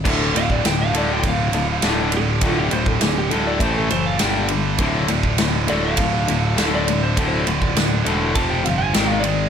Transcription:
<<
  \new Staff \with { instrumentName = "Lead electric guitar" } { \time 4/4 \key d \minor \tempo 4 = 101 r8 f''16 d''16 g''16 f''16 d''16 g''16 f''4 r8 a'16 g'16 | f'16 g'16 c''16 a'16 gis'16 g'16 a'16 d''16 c''16 a'16 c''16 f''16 g''8 r8 | r4. d''16 f''4. d''8 c''16 | a'16 c''16 d''8 r4 a''16 g''16 f''16 gis''16 g''16 f''16 d''8 | }
  \new Staff \with { instrumentName = "Distorted electric guitar" } { \clef bass \time 4/4 \key d \minor <d, a, d>8 <d, a, d>8 <d, a, d>8 <d, a, d>8 <d, a, d>8 <d, a, d>8 <d, a, d>8 <d, a, d>8 | <d, a, d>8 <d, a, d>8 <d, a, d>8 <d, a, d>8 <a, e a>8 <a, e a>8 <g, d g>8 <g, d g>8 | <d, a, d>8 <d, a, d>8 <d, a, d>8 <d, a, d>8 <d, a, d>8 <d, a, d>8 <d, a, d>8 <d, a, d>8 | <d, a, d>8 <d, a, d>8 <d, a, d>8 <d, a, d>8 <f, c f>8 <f, c f>8 <gis, dis gis>8 <gis, dis gis>8 | }
  \new Staff \with { instrumentName = "Overdriven electric guitar" } { \clef bass \time 4/4 \key d \minor <d, a, d>8 <d, a,>8 <d, a,>8 <d, a, d>8 <d, a,>8 <d, a,>8 <d, a, d>8 <d, a,>8 | <d, a, d>8 <d, a,>8 <d, a,>8 <d, a, d>8 <a, e a>8 <a, e>8 <g, d g>8 <g, d>8 | <d, a, d>8 <d, a,>8 <d, a,>8 <d, a, d>8 <d, a,>8 <d, a,>8 <d, a, d>8 <d, a,>8 | <d, a, d>8 <d, a,>8 <d, a,>8 <d, a, d>8 <f, c f>8 <f, c>8 <gis, dis gis>8 <gis, dis>8 | }
  \new Staff \with { instrumentName = "Picked electric bass" } { \clef bass \time 4/4 \key d \minor d,,8 d,,8 d,,8 d,,8 d,,8 d,,8 d,,4 | d,,8 d,,8 d,,8 d,,8 a,,8 fis,,8 g,,4 | d,,8 d,,8 d,,8 d,,8 d,,8 d,,8 d,,4 | d,,8 d,,8 d,,8 e,,8 f,,8 g,,8 gis,,4 | }
  \new DrumStaff \with { instrumentName = "Drums" } \drummode { \time 4/4 <cymc bd>8 cymr16 bd16 <cymr sn>8 cymr8 <bd cymr>8 cymr8 <cymr sn>8 cymr8 | <bd cymr>8 cymr16 bd16 <cymr sn>8 cymr8 <bd cymr>8 cymr8 <cymr sn>8 cymr8 | <bd cymr>8 cymr16 bd16 <cymr sn>8 cymr8 <bd cymr>8 cymr8 <cymr sn>8 cymr8 | <bd cymr>8 cymr16 bd16 <cymr sn>8 cymr8 <bd cymr>8 cymr8 <cymr sn>8 cymr8 | }
>>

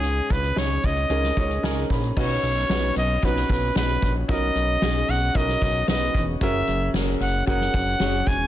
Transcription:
<<
  \new Staff \with { instrumentName = "Trumpet" } { \time 4/4 \key b \major \tempo 4 = 113 gis'8 b'8 cis''8 dis''2 r8 | cis''4. dis''8 b'4 b'8. r16 | dis''4. fis''8 dis''4 dis''8. r16 | e''4 r8 fis''8 fis''4. gis''8 | }
  \new Staff \with { instrumentName = "Grand piano" } { \time 4/4 \key b \major << { gis,4 r2 gis''8 b''8 | r1 | r1 | cis4. r2 r8 | } \\ { <cis' dis' gis' cis''>8 r8 <cis' dis' gis' cis''>4 <cis' dis' gis' ais'>8 <cis' dis' gis' cis''>8 <cis' dis' gis' ais'>4 | <cis' dis' fis' b'>4 <cis' dis' fis' b'>4 <cis' dis' fis' b'>4 <cis' dis' fis' b'>4 | <cis' dis' fis' ais'>4 <cis' dis' fis' gis'>4 <cis' dis' fis' ais'>4 <cis' dis' fis' b'>4 | <cis' fis' gis' ais'>4 <cis' fis' gis' ais'>4 <cis' fis' gis' ais'>4 <cis' fis' gis' cis''>4 | } >> }
  \new Staff \with { instrumentName = "Analog synth bass" } { \clef bass \time 4/4 \key b \major cis,8 cis,8 cis,8 cis,8 cis,8 cis,8 cis,8 ais,,8 | b,,8 b,,8 b,,8 b,,8 b,,8 b,,8 b,,8 ais,,8 | b,,8 b,,8 b,,8 b,,8 b,,8 b,,8 b,,8 e,,8 | fis,,8 fis,,8 fis,,8 fis,,8 fis,,8 fis,,8 fis,,8 e,,8 | }
  \new DrumStaff \with { instrumentName = "Drums" } \drummode { \time 4/4 hh8 <hh bd>16 hh16 sn8 <hh bd>16 hh16 hh16 sn16 <hh bd>16 hh16 sn16 hh16 <hho bd>16 hh16 | <cymc bd>8 <hho hhp>8 <hho hhp sn>8 <hho hhp>8 <hho hhp bd>16 sn16 <hho hhp bd>8 <hho hhp sn>8 <hho hhp bd>8 | <hho hhp bd>8 <hho hhp>8 <hho hhp sn>8 <hho hhp>8 <hho hhp bd>16 sn16 <hho hhp bd>8 <hho hhp sn>8 <hho hhp bd>8 | <hho hhp bd>8 <hho hhp>8 <hho hhp sn>8 <hho hhp>8 <hho hhp bd>16 sn16 <hho hhp bd>8 <hho hhp sn>8 <hho hhp bd>8 | }
>>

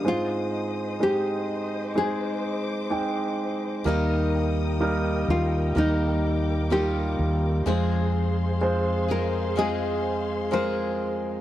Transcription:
<<
  \new Staff \with { instrumentName = "String section" } { \time 4/4 \key ees \major \tempo 4 = 63 << { ees'''2 d'''2 | ees'''2 d'''2 | <c'' c'''>1 | } \\ { <c'' ees''>1 | <bes' g''>1 | <aes' f''>1 | } >> }
  \new Staff \with { instrumentName = "Nylon-string guitar" } { \time 4/4 \key ees \major f'4 g'4 aes'4. r8 | r4. f'8 ees'4 g'4 | r4. bes'8 aes'4 c''4 | }
  \new Staff \with { instrumentName = "Grand piano" } { \time 4/4 \key ees \major <aes c' ees' c''>4 <aes c' ees' c''>4 <aes c' ees' c''>4 <aes c' ees' g''>4 | <g bes ees' bes'>4 <g bes ees' bes'>4 <g bes ees' bes'>4 <g bes ees' f'>4 | <aes c' f' c''>4 <aes c' f' c''>4 <aes c' f' ees''>4 <aes c' f' bes'>4 | }
  \new Staff \with { instrumentName = "Grand piano" } { \clef bass \time 4/4 \key ees \major aes,4. r2 r8 | ees4. r2 r8 | r1 | }
  \new Staff \with { instrumentName = "Steel-string acoustic guitar" } { \time 4/4 \key ees \major r1 | <ees bes ees' g'>2 <ees bes ees' g'>4 <ees bes ees' g'>4 | <f, c f aes c' aes'>4. <f aes c' aes'>8 <f aes c' aes'>4 <f aes c' aes'>4 | }
  \new Staff \with { instrumentName = "Fretless electric bass" } { \clef bass \time 4/4 \key ees \major r1 | ees,4. ees,8 ees,4. ees,8 | f,1 | }
>>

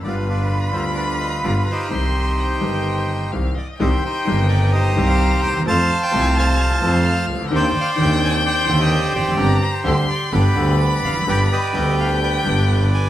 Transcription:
<<
  \new Staff \with { instrumentName = "Violin" } { \time 4/4 \key c \minor \tempo 4 = 128 b''1 | c'''4 g''2 f''8 ees''8 | g''2 bes''2 | a''2. f''4 |
g''1 | bes''4 c'''4 b''2~ | b''4 g''2. | }
  \new Staff \with { instrumentName = "Bandoneon" } { \time 4/4 \key c \minor << { d''8 b'4 c''8 d''8 ees''8 d''8 c''8~ | c''2. r8 d''8 | ees''8 c''4 d''8 ees''8. f''8. g''8 | a''8. g''8. a''2 r8 |
g''8 f''8 g''8 aes''8 g''8. ees''8. d''8~ | d''8 c''4 d''8 g''4 r8 f''8 | g''8 ees''4 f''8 g''8. r8. aes''8 | } \\ { <f' b'>8 <d' f'>4. <f' b'>4. <ees' g'>8~ | <ees' g'>2. r4 | <g' c''>8 <ees' g'>4. <g' c''>8. c''4~ c''16 | <c'' f''>8. c''8. <c'' f''>2 r8 |
<c'' d''>2 <c'' d''>8. <g' c''>8. g'8~ | g'8 g'4. <b' d''>2 | <b' d''>8 <g' b'>4. <b' d''>2 | } >> }
  \new Staff \with { instrumentName = "String section" } { \time 4/4 \key c \minor r1 | r1 | <g c' ees'>8 r8 <g c' ees'>4. <g c' ees'>4. | <a c' f'>8 r8 <a c' f'>4. <a c' f'>4. |
<c' d' ees'>8 r8 <c' d'>4. <d c'>4. | <c' d' g'>8 r8 <c' d' g'>8 r8 <b d' g'>8 <b d' g'>4. | <b d' g'>8 r8 <b d' g'>4. <b d' g'>4. | }
  \new Staff \with { instrumentName = "Grand piano" } { \clef bass \time 4/4 \key c \minor << { <g,, g, d g b f'>4. <d, d g b f'>4. <g,, g, d g b f'>8 r8 | <c, c ees g c' g'>4. <g,, g, ees g c' g'>4. <c, c ees g c' g'>8 r8 | <c, c ees g c' g'>8 r8 <g,, g, ees g c' g'>4. <c, c ees g c' g'>4. | <f, f a c' a'>8 r8 <c, c f a c' a'>4. <f, f a c' a'>4. |
<ees, ees c' d' g'>8 r8 <ees, ees c' d' g'>4. <ees, d ees c' g'>4. | <g,, g, d g c' g'>8 r8 <d, d g c' g'>8 r8 <g,, g, d g b g'>8 <d, d g b g'>4. | <g,, g, d g b g'>8 r8 <d, d g b g'>4. <g,, g, d g b g'>4. | } \\ { r1 | r1 | r2. r8 r32 d,32 ees,32 e,32 | r2. r8 r32 c,32 des,32 d,32 |
r2. r8 r32 e,32 f,32 fis,32 | r2. r8 r32 e,32 f,32 fis,32 | r1 | } >> }
  \new Staff \with { instrumentName = "Double bass" } { \clef bass \time 4/4 \key c \minor g,,4. d,4. g,,8 r8 | c,4. g,,4. c,8 r8 | c,8 r8 g,,4. c,4 ees,8 | f,8 r8 c,4. f,4 des,8 |
ees,8 r8 ees,4. ees,4 f,,8 | g,,8 r8 d,8 r8 g,,8 d,4 f,,8 | g,,8 r8 d,4. g,,4. | }
>>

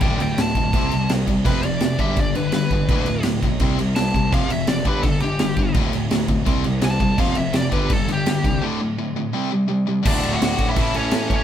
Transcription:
<<
  \new Staff \with { instrumentName = "Lead electric guitar" } { \time 4/4 \key c \lydian \tempo 4 = 168 <d'' g''>8 <d'' g''>8 a''2 r4 | b'8 d''4 e''8 d''8 b'8 b'4~ | b'4 r2 a''4 | f''8 e''8 d''8 b'8 a'8 g'4. |
r2. a''4 | f''8 e''8 d''8 b'8 a'8 g'4. | r1 | <d' d''>8. <fis' fis''>16 <fis' fis''>8. <e' e''>8. <cis' cis''>4 <cis' cis''>8 | }
  \new Staff \with { instrumentName = "Distorted electric guitar" } { \clef bass \time 4/4 \key c \lydian <d, a, d>8 <d, a,>8 <d, a,>8 <d, a,>8 <c g c'>8 <c g>8 <c g>8 <c g>8 | <f, c f>8 <f, c>8 <f, c>8 <g, d g>8 <g, d>8 <g, d>8 <g, d>8 <g, d>8 | <d, a, d>8 <d, a,>8 <d, a,>8 <d, a,>8 <c g c'>8 <c g>8 <c g>8 <c g>8 | <f, c f>8 <f, c>8 <f, c>8 <g, d g>8 <g, d>8 <g, d>8 <g, d>8 <g, d>8 |
<d, a, d>8 <d, a,>8 <d, a,>8 <d, a,>8 <c g c'>8 <c g>8 <c g>8 <c g>8 | <f, c f>8 <f, c>8 <f, c>8 <g, d g>8 <g, d>8 <g, d>8 <g, d>8 <g, d>8 | <d, a, d>8 <d, a,>8 <d, a,>8 <d, a,>8 <c g c'>8 <c g>8 <c g>8 <c g>8 | <d, a, d>2 <a, e a>2 | }
  \new Staff \with { instrumentName = "Overdriven electric guitar" } { \clef bass \time 4/4 \key c \lydian <d, a, d>8 <d, a,>8 <d, a,>8 <d, a,>8 <c g c'>8 <c g>8 <c g>8 <c g>8 | <f, c f>8 <f, c>8 <f, c>8 <g, d g>8 <g, d>8 <g, d>8 <g, d>8 <g, d>8 | <d, a, d>8 <d, a,>8 <d, a,>8 <d, a,>8 <c g c'>8 <c g>8 <c g>8 <c g>8 | <f, c f>8 <f, c>8 <f, c>8 <g, d g>8 <g, d>8 <g, d>8 <g, d>8 <g, d>8 |
<d, a, d>8 <d, a,>8 <d, a,>8 <d, a,>8 <c g c'>8 <c g>8 <c g>8 <c g>8 | <f, c f>8 <f, c>8 <f, c>8 <g, d g>8 <g, d>8 <g, d>8 <g, d>8 <g, d>8 | <d, a, d>8 <d, a,>8 <d, a,>8 <d, a,>8 <c g c'>8 <c g>8 <c g>8 <c g>8 | <d, a, d a fis'>4. <d, a, d a fis'>8 <a, e a cis' e' a'>4. <a, e a cis' e' a'>8 | }
  \new Staff \with { instrumentName = "Picked electric bass" } { \clef bass \time 4/4 \key c \lydian d,,8 d,,8 d,,8 d,,8 c,8 c,8 c,8 c,8 | f,,8 f,,8 f,,8 g,,8 g,,8 g,,8 g,,8 g,,8 | d,,8 d,,8 d,,8 b,,8 c,8 c,8 c,8 c,8 | f,,8 f,,8 fis,,8 g,,8 g,,8 g,,8 g,,8 g,,8 |
d,,8 d,,8 d,,8 d,,8 c,8 c,8 c,8 c,8 | f,,8 f,,8 f,,8 g,,8 g,,8 g,,8 g,,8 c,8 | r1 | d,,8 d,,8 d,,8 a,,8 a,,8 a,,8 a,8 a,,8 | }
  \new DrumStaff \with { instrumentName = "Drums" } \drummode { \time 4/4 <cymc bd>8 cymc8 <cymc sn>8 <cymc bd>8 <cymc bd>8 cymc8 <cymc sn>8 <cymc bd>8 | <cymc bd>8 cymc8 <cymc sn>8 <cymc bd>8 <cymc bd>8 cymc8 <cymc sn>8 <cymc bd>8 | <cymc bd>8 cymc8 <cymc sn>8 <cymc bd>8 <cymc bd>8 cymc8 <cymc sn>8 <cymc bd>8 | <cymc bd>8 cymc8 <cymc sn>8 <cymc bd>8 <cymc bd>8 cymc8 <cymc sn>8 <cymc bd>8 |
<cymc bd>8 cymc8 <cymc sn>8 <cymc bd>8 <cymc bd>8 cymc8 <cymc sn>8 <cymc bd>8 | <cymc bd>8 cymc8 <cymc sn>8 <cymc bd>8 <cymc bd>8 cymc8 <cymc sn>8 <cymc bd>8 | r4 r4 r4 r4 | <cymc bd>8 cymc8 <cymc sn>8 <cymc bd>8 <cymc bd>8 cymc8 <cymc sn>8 <cymc bd>8 | }
>>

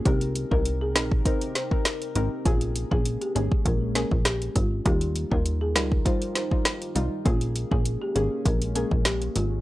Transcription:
<<
  \new Staff \with { instrumentName = "Marimba" } { \time 4/4 \key bes \dorian \tempo 4 = 100 g'8 r16 bes'16 r16 aes'16 bes'16 r16 c''16 r16 c''16 r4 r16 | f'8 r16 aes'16 r16 g'16 aes'16 r16 bes'16 r16 bes'16 r16 g'16 r16 f'16 r16 | g'8 r16 bes'16 r16 aes'16 bes'16 r16 c''16 r16 c''16 r4 r16 | f'8 r16 aes'16 r16 g'16 aes'16 r16 bes'16 r16 bes'16 r16 g'16 r16 f'16 r16 | }
  \new Staff \with { instrumentName = "Synth pluck" } { \time 4/4 \key bes \dorian <c' ees' bes'>8. <c' ees' bes'>8. <c' ees' bes'>8 <c' ees' bes'>16 r8 <c' ees' bes'>16 r8 <c' ees' bes'>16 r16 | <bes des' aes'>8. <bes des' aes'>8. <bes des' aes'>8 r8 <bes des' aes'>16 r4 r16 | <g ees' f'>8. <g ees' f'>8. <g ees' f'>8 <g ees' f'>16 r8 <g ees' f'>16 r8 <g ees' f'>16 r16 | <bes des' aes'>8. <bes des' aes'>8. <bes des' aes'>8 r8 <bes des' aes'>16 r4 r16 | }
  \new Staff \with { instrumentName = "Ambient pad" } { \time 4/4 \key bes \dorian <c c' ees' g' bes'>1 | <aes bes des'>1 | <ees ees' f' g' bes'>1 | <aes bes des'>1 | }
  \new Staff \with { instrumentName = "Analog synth bass" } { \clef bass \time 4/4 \key bes \dorian c,8. c,8. bes,,8 r4. aes,,16 r16 | bes,,8. bes,,8 r16 aes,,16 r16 bes,,8. bes,,8. aes,,8 | ees,8. ees,8. des,8 r4. c,16 r16 | bes,,8. bes,,8 r16 aes,,16 r16 bes,,8. bes,,8. aes,,8 | }
  \new DrumStaff \with { instrumentName = "Drums" } \drummode { \time 4/4 <hh bd>16 hh16 hh16 bd16 hh8 <hh sn>16 bd16 <hh bd>16 hh16 <hh sn>16 bd16 <hh sn>16 hh16 hh8 | <hh bd>16 hh16 hh16 bd16 hh16 hh16 hh16 bd16 <hh bd>8 <hh sn>16 bd16 <hh ss sn>16 hh16 <hh bd>8 | <hh bd>16 hh16 hh16 bd16 hh8 <hh sn>16 bd16 <hh bd>16 hh16 <hh sn>16 bd16 <hh sn>16 hh16 hh8 | <hh bd>16 hh16 hh16 bd16 hh8 hh8 <hh bd>16 hh16 hh16 bd16 <hh sn>16 hh16 hh8 | }
>>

